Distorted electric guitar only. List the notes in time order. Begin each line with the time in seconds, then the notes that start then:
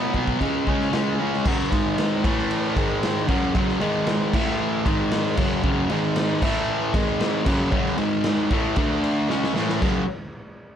Already playing: B2 F#3 B3
0.14 B2 F#3 B3
0.40 C#3 G#3 C#4
0.68 C#3 G#3 C#4
0.93 C#3 G#3 C#4
1.20 C#3 G#3 C#4
1.46 F#2 C#3 F#3
1.72 G#2 D#3 G#3
2.25 A2 E3 A3
2.76 G#2 D#3 G#3
3.28 F#2 C#3 F#3
3.55 F#2 C#3 F#3
3.81 G#2 D#3 G#3
4.35 A2 E3 A3
4.85 G#2 D#3 G#3
5.37 F#2 C#3 F#3
5.64 F#2 C#3 F#3
5.90 G#2 D#3 G#3
6.43 A2 E3 A3
6.94 G#2 D#3 G#3
7.45 F#2 C#3 F#3
7.72 F#2 C#3 F#3
7.98 G#2 D#3 G#3
8.51 A2 E3 A3
8.77 D3 A3 D4
9.29 C#3 G#3 C#4
9.54 A2 E3 A3
9.81 F#2 C#3 F#3